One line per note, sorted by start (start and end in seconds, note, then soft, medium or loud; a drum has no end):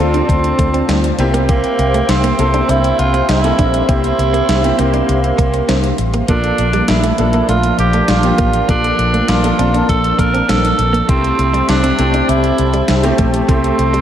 0.00 0.20 D2 loud
0.00 1.19 C4 medium
0.00 1.16 C4 medium
0.00 1.21 D4 medium
0.00 1.15 F4 medium
0.00 1.21 F4 medium
0.00 1.21 A4 medium
0.00 6.25 C5 medium
0.00 1.15 D5 medium
0.00 1.15 A5 medium
0.14 0.23 D4 medium
0.14 closed hi-hat soft
0.29 0.50 D2 loud
0.29 muted clean electric guitar stroke soft
0.29 kick medium
0.29 closed hi-hat medium
0.44 closed hi-hat soft
0.59 0.80 D2 medium
0.59 0.68 A3 medium
0.59 kick medium
0.59 closed hi-hat medium
0.74 0.83 C4 medium
0.74 closed hi-hat soft
0.89 1.10 D2 loud
0.89 0.98 C4 medium
0.89 snare medium
0.89 closed hi-hat medium
1.04 closed hi-hat soft
1.18 1.62 C2 medium
1.18 2.21 A#3 medium
1.18 2.21 C4 medium
1.18 2.21 E4 medium
1.18 6.25 G4 medium
1.18 2.21 G4 medium
1.18 6.25 E5 medium
1.18 3.57 G5 medium
1.18 muted clean electric guitar stroke soft
1.18 closed hi-hat medium
1.34 1.43 A#3 medium
1.34 closed hi-hat medium
1.49 2.11 A#3 medium
1.49 1.58 C4 medium
1.49 kick loud
1.49 closed hi-hat medium
1.64 closed hi-hat soft
1.79 2.00 C2 loud
1.79 muted clean electric guitar stroke soft
1.79 closed hi-hat medium
1.94 2.03 A3 medium
1.94 closed hi-hat soft
2.08 2.30 C2 medium
2.08 2.71 C4 medium
2.08 snare loud
2.08 closed hi-hat medium
2.24 2.33 A#3 medium
2.24 closed hi-hat medium
2.39 2.60 C2 loud
2.39 3.28 A#3 medium
2.39 3.28 C4 medium
2.39 3.28 E4 medium
2.39 3.29 A4 medium
2.39 muted clean electric guitar stroke soft
2.39 closed hi-hat medium
2.54 2.63 D4 medium
2.54 closed hi-hat soft
2.69 2.90 C2 loud
2.69 2.78 C4 medium
2.69 3.01 E4 loud
2.69 closed hi-hat medium
2.84 muted clean electric guitar stroke soft
2.84 closed hi-hat soft
2.99 3.20 C2 medium
2.99 3.29 F4 loud
2.99 closed hi-hat medium
3.14 3.23 C4 medium
3.14 closed hi-hat soft
3.29 3.50 C2 medium
3.29 3.85 E4 medium
3.29 snare medium
3.29 closed hi-hat medium
3.43 3.82 A#3 medium
3.43 3.82 C4 medium
3.43 3.82 E4 medium
3.43 3.82 A4 medium
3.43 closed hi-hat soft
3.59 3.80 A#1 medium
3.59 3.68 D4 medium
3.59 6.26 C6 medium
3.59 kick medium
3.59 closed hi-hat medium
3.74 closed hi-hat medium
3.88 4.10 C2 medium
3.88 4.52 A#3 medium
3.88 4.53 C4 medium
3.88 3.98 C4 medium
3.88 4.53 E4 medium
3.88 4.81 E4 loud
3.88 4.53 G4 medium
3.88 kick loud
3.88 closed hi-hat medium
4.04 closed hi-hat soft
4.18 4.40 C2 medium
4.18 muted clean electric guitar stroke soft
4.18 closed hi-hat medium
4.33 4.43 A#3 medium
4.33 closed hi-hat soft
4.49 4.70 C2 medium
4.49 muted clean electric guitar stroke soft
4.49 snare loud
4.49 closed hi-hat medium
4.63 4.76 A#3 medium
4.63 4.76 C4 medium
4.63 4.77 E4 medium
4.63 4.77 G4 medium
4.63 closed hi-hat medium
4.78 5.00 C2 medium
4.78 5.81 A#3 medium
4.78 5.99 A#3 medium
4.78 4.88 C4 medium
4.78 5.81 C4 medium
4.78 5.81 E4 medium
4.78 5.81 G4 medium
4.78 closed hi-hat medium
4.94 5.03 D4 medium
4.94 closed hi-hat soft
5.08 5.30 C2 medium
5.08 muted clean electric guitar stroke soft
5.08 closed hi-hat medium
5.24 closed hi-hat soft
5.38 5.60 C2 medium
5.38 5.48 A#3 medium
5.38 kick medium
5.38 closed hi-hat medium
5.54 5.63 C4 medium
5.54 closed hi-hat soft
5.68 5.90 C2 medium
5.68 5.78 C4 medium
5.68 snare medium
5.68 closed hi-hat medium
5.84 closed hi-hat soft
5.98 6.20 A1 medium
5.98 muted clean electric guitar stroke soft
5.98 closed hi-hat medium
6.14 6.23 A#3 medium
6.14 closed hi-hat medium
6.28 6.50 A#1 loud
6.28 11.05 F3 medium
6.28 7.05 A#3 medium
6.28 11.04 A#3 medium
6.28 6.38 A#3 medium
6.28 7.05 D4 medium
6.28 6.91 D4 medium
6.28 7.06 F4 medium
6.28 7.06 A4 medium
6.28 11.05 D5 medium
6.28 14.01 A5 medium
6.28 kick loud
6.28 closed hi-hat medium
6.44 closed hi-hat soft
6.58 6.80 A#1 medium
6.58 muted clean electric guitar stroke soft
6.58 closed hi-hat medium
6.73 6.83 G3 medium
6.73 closed hi-hat soft
6.88 7.10 A#1 medium
6.88 7.48 E4 medium
6.88 snare loud
6.88 closed hi-hat medium
7.04 7.13 A3 medium
7.04 closed hi-hat medium
7.18 7.40 A#1 medium
7.18 8.08 F3 medium
7.18 8.08 A#3 medium
7.18 8.08 D4 medium
7.18 8.09 A4 medium
7.18 muted clean electric guitar stroke soft
7.18 closed hi-hat medium
7.33 7.43 A#3 medium
7.33 closed hi-hat medium
7.48 7.70 A#1 medium
7.48 7.58 A3 medium
7.48 7.77 F4 medium
7.48 closed hi-hat medium
7.63 muted clean electric guitar stroke soft
7.63 closed hi-hat medium
7.78 8.00 A#1 medium
7.78 8.11 G4 medium
7.78 closed hi-hat medium
7.93 8.03 A3 medium
7.93 closed hi-hat soft
8.08 8.30 A#1 medium
8.08 8.69 F4 medium
8.08 snare medium
8.08 closed hi-hat medium
8.23 8.62 A#3 medium
8.23 8.62 D4 medium
8.23 8.62 F4 medium
8.23 8.63 G4 medium
8.23 closed hi-hat soft
8.38 8.60 A1 medium
8.38 8.48 A#3 medium
8.38 kick medium
8.38 closed hi-hat medium
8.53 closed hi-hat medium
8.68 8.90 A#1 medium
8.68 9.32 A#3 medium
8.68 8.78 A#3 medium
8.68 9.33 D4 medium
8.68 9.31 D4 medium
8.68 9.33 F4 medium
8.68 9.33 A4 medium
8.68 kick loud
8.68 closed hi-hat medium
8.84 closed hi-hat soft
8.99 9.20 A#1 medium
8.99 muted clean electric guitar stroke soft
8.99 closed hi-hat medium
9.14 9.23 A3 medium
9.14 closed hi-hat soft
9.28 9.50 A#1 medium
9.28 9.88 F4 medium
9.28 muted clean electric guitar stroke soft
9.28 snare loud
9.28 closed hi-hat medium
9.43 9.56 A#3 medium
9.43 9.56 D4 medium
9.43 9.57 F4 medium
9.43 9.57 A4 medium
9.43 closed hi-hat medium
9.58 9.80 A#1 medium
9.58 10.61 A#3 medium
9.58 9.68 C4 medium
9.58 10.61 D4 medium
9.58 10.61 F4 medium
9.58 10.61 A5 medium
9.58 closed hi-hat medium
9.74 9.83 D4 medium
9.74 closed hi-hat soft
9.89 10.10 A#1 medium
9.89 10.20 A4 loud
9.89 muted clean electric guitar stroke soft
9.89 kick medium
9.89 closed hi-hat medium
10.04 closed hi-hat medium
10.19 10.40 A#1 medium
10.19 10.28 A#3 medium
10.19 10.50 A#4 loud
10.19 kick medium
10.19 closed hi-hat medium
10.34 10.43 C4 medium
10.34 closed hi-hat soft
10.49 10.71 A#1 medium
10.49 10.58 C4 medium
10.49 11.08 A4 medium
10.49 snare loud
10.49 closed hi-hat medium
10.65 closed hi-hat soft
10.79 11.00 A#1 medium
10.79 muted clean electric guitar stroke soft
10.79 closed hi-hat medium
10.93 11.03 A#3 medium
10.93 closed hi-hat medium
11.08 11.30 C2 loud
11.08 11.85 A3 medium
11.08 11.18 A3 medium
11.08 11.85 C4 medium
11.08 11.70 C4 medium
11.08 11.85 E4 medium
11.08 14.01 G4 medium
11.08 11.86 G4 medium
11.08 14.01 C5 medium
11.08 14.01 E5 medium
11.08 kick loud
11.08 closed hi-hat medium
11.24 closed hi-hat soft
11.39 11.60 C2 medium
11.39 muted clean electric guitar stroke soft
11.39 closed hi-hat medium
11.53 11.63 G3 medium
11.53 closed hi-hat soft
11.68 11.90 C2 medium
11.68 12.31 D4 medium
11.68 snare loud
11.68 closed hi-hat medium
11.83 11.93 C4 medium
11.83 closed hi-hat medium
11.98 12.20 C2 medium
11.98 12.88 A3 medium
11.98 12.88 C4 medium
11.98 12.88 E4 medium
11.98 12.89 G4 medium
11.98 muted clean electric guitar stroke soft
11.98 closed hi-hat medium
12.14 12.23 D4 medium
12.14 closed hi-hat medium
12.29 12.50 C2 medium
12.29 12.38 C4 medium
12.29 13.22 E4 medium
12.29 closed hi-hat medium
12.44 muted clean electric guitar stroke soft
12.44 closed hi-hat medium
12.58 12.80 C2 medium
12.58 closed hi-hat medium
12.74 12.83 G3 medium
12.74 closed hi-hat soft
12.88 13.10 C2 loud
12.88 snare medium
12.88 closed hi-hat medium
13.03 13.42 A3 medium
13.03 13.42 C4 medium
13.03 13.42 E4 medium
13.03 13.42 G4 medium
13.03 closed hi-hat soft
13.18 13.40 A#1 medium
13.18 13.28 A3 medium
13.18 kick medium
13.18 closed hi-hat medium
13.34 closed hi-hat medium
13.48 13.70 C2 medium
13.48 13.58 A3 medium
13.48 14.01 A3 medium
13.48 14.01 C4 medium
13.48 14.01 C4 loud
13.48 14.01 E4 medium
13.48 14.01 G4 medium
13.48 kick loud
13.48 closed hi-hat medium
13.64 closed hi-hat soft
13.78 14.00 C2 medium
13.78 muted clean electric guitar stroke soft
13.78 closed hi-hat medium
13.93 14.01 G3 medium
13.93 closed hi-hat soft